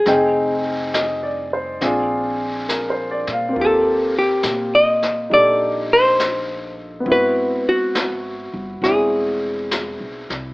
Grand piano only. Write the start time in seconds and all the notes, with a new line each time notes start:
0.07 C4 D#4 G#4 G5
0.94 D#5
1.23 D5
1.53 C5
1.81 C4 D4 F4 G#4
2.69 A#4
2.90 C5
3.11 D5
3.33 F5
3.49 C4
3.53 A#3 F4
3.60 G4
5.30 D#4 G4 A4
7.00 B3 C4
7.08 E4 F#4
8.82 C4 D4 E4